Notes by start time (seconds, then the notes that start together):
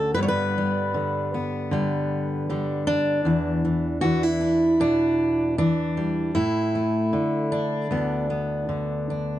Already playing: D2 D3 C#4 F#4 A4
0.14 G2 D3 G3 B3 B4
0.23 C#5
0.28 B4
0.58 G3
0.94 D3
1.34 B3
1.71 D3 G3
2.50 D3 G3
2.87 D4
3.25 E2 E3
3.65 E3
4.01 E3 F#4
4.23 E4
4.41 D4
4.80 B2 D4
5.58 E3 D4
5.97 G3
6.35 A2 E4
6.75 A3
7.13 D3
7.52 D4
7.91 D2 B3
8.30 B3
8.69 D3
9.10 D4